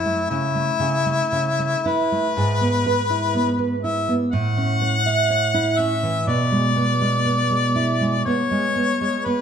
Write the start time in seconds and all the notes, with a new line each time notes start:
Already playing: F#2 E4
0.06 A3
0.30 C#3 E4
0.55 A3
0.80 C#3
1.06 A3
1.32 C#3
1.59 A3
1.86 E4 B4
2.12 A3
2.37 G#2
2.61 B3
2.86 B4
3.10 E4
3.34 B3
3.59 B4
3.83 E4 E5
4.09 B3
4.32 A2 F#5
4.57 C#4
4.81 C#5
5.06 E5
5.30 C#5
5.54 E4
5.78 C#4 E5
6.03 E3
6.27 B2 D5
6.52 G#3
6.76 B3
7.01 G#3
7.25 B3
7.50 G#3
7.76 E4
8.01 G#3
8.25 B3 C#5
8.51 G#3
8.76 B3
9.01 G#3
9.25 B3 B4